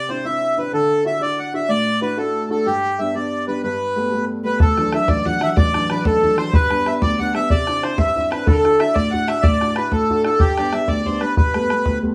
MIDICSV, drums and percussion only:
0, 0, Header, 1, 2, 480
1, 0, Start_track
1, 0, Key_signature, 1, "major"
1, 0, Tempo, 322407
1, 1084, Time_signature, 6, 3, 24, 8
1, 18083, End_track
2, 0, Start_track
2, 0, Title_t, "Bodhran"
2, 6848, Note_on_c, 9, 64, 90
2, 6997, Note_off_c, 9, 64, 0
2, 7109, Note_on_c, 9, 64, 53
2, 7258, Note_off_c, 9, 64, 0
2, 7333, Note_on_c, 9, 64, 70
2, 7482, Note_off_c, 9, 64, 0
2, 7564, Note_on_c, 9, 64, 85
2, 7713, Note_off_c, 9, 64, 0
2, 7822, Note_on_c, 9, 64, 29
2, 7971, Note_off_c, 9, 64, 0
2, 8057, Note_on_c, 9, 64, 65
2, 8206, Note_off_c, 9, 64, 0
2, 8293, Note_on_c, 9, 64, 96
2, 8442, Note_off_c, 9, 64, 0
2, 8550, Note_on_c, 9, 64, 69
2, 8699, Note_off_c, 9, 64, 0
2, 8780, Note_on_c, 9, 64, 69
2, 8929, Note_off_c, 9, 64, 0
2, 9010, Note_on_c, 9, 64, 86
2, 9159, Note_off_c, 9, 64, 0
2, 9270, Note_on_c, 9, 64, 26
2, 9419, Note_off_c, 9, 64, 0
2, 9498, Note_on_c, 9, 64, 67
2, 9647, Note_off_c, 9, 64, 0
2, 9728, Note_on_c, 9, 64, 89
2, 9877, Note_off_c, 9, 64, 0
2, 9983, Note_on_c, 9, 64, 61
2, 10132, Note_off_c, 9, 64, 0
2, 10218, Note_on_c, 9, 64, 58
2, 10367, Note_off_c, 9, 64, 0
2, 10450, Note_on_c, 9, 64, 78
2, 10598, Note_off_c, 9, 64, 0
2, 10711, Note_on_c, 9, 64, 21
2, 10860, Note_off_c, 9, 64, 0
2, 10938, Note_on_c, 9, 64, 58
2, 11087, Note_off_c, 9, 64, 0
2, 11169, Note_on_c, 9, 64, 68
2, 11318, Note_off_c, 9, 64, 0
2, 11422, Note_on_c, 9, 64, 50
2, 11571, Note_off_c, 9, 64, 0
2, 11664, Note_on_c, 9, 64, 62
2, 11812, Note_off_c, 9, 64, 0
2, 11881, Note_on_c, 9, 64, 86
2, 12030, Note_off_c, 9, 64, 0
2, 12154, Note_on_c, 9, 64, 23
2, 12303, Note_off_c, 9, 64, 0
2, 12387, Note_on_c, 9, 64, 67
2, 12535, Note_off_c, 9, 64, 0
2, 12613, Note_on_c, 9, 64, 85
2, 12762, Note_off_c, 9, 64, 0
2, 12877, Note_on_c, 9, 64, 59
2, 13026, Note_off_c, 9, 64, 0
2, 13101, Note_on_c, 9, 64, 65
2, 13250, Note_off_c, 9, 64, 0
2, 13334, Note_on_c, 9, 64, 80
2, 13483, Note_off_c, 9, 64, 0
2, 13594, Note_on_c, 9, 64, 21
2, 13742, Note_off_c, 9, 64, 0
2, 13820, Note_on_c, 9, 64, 65
2, 13969, Note_off_c, 9, 64, 0
2, 14047, Note_on_c, 9, 64, 87
2, 14196, Note_off_c, 9, 64, 0
2, 14311, Note_on_c, 9, 64, 57
2, 14459, Note_off_c, 9, 64, 0
2, 14529, Note_on_c, 9, 64, 67
2, 14678, Note_off_c, 9, 64, 0
2, 14764, Note_on_c, 9, 64, 70
2, 14913, Note_off_c, 9, 64, 0
2, 15026, Note_on_c, 9, 64, 23
2, 15175, Note_off_c, 9, 64, 0
2, 15253, Note_on_c, 9, 64, 62
2, 15402, Note_off_c, 9, 64, 0
2, 15479, Note_on_c, 9, 64, 74
2, 15628, Note_off_c, 9, 64, 0
2, 15744, Note_on_c, 9, 64, 65
2, 15893, Note_off_c, 9, 64, 0
2, 15969, Note_on_c, 9, 64, 62
2, 16118, Note_off_c, 9, 64, 0
2, 16197, Note_on_c, 9, 64, 69
2, 16345, Note_off_c, 9, 64, 0
2, 16460, Note_on_c, 9, 64, 25
2, 16609, Note_off_c, 9, 64, 0
2, 16689, Note_on_c, 9, 64, 57
2, 16838, Note_off_c, 9, 64, 0
2, 16930, Note_on_c, 9, 64, 81
2, 17079, Note_off_c, 9, 64, 0
2, 17186, Note_on_c, 9, 64, 62
2, 17335, Note_off_c, 9, 64, 0
2, 17423, Note_on_c, 9, 64, 63
2, 17572, Note_off_c, 9, 64, 0
2, 17649, Note_on_c, 9, 64, 72
2, 17798, Note_off_c, 9, 64, 0
2, 17909, Note_on_c, 9, 64, 23
2, 18058, Note_off_c, 9, 64, 0
2, 18083, End_track
0, 0, End_of_file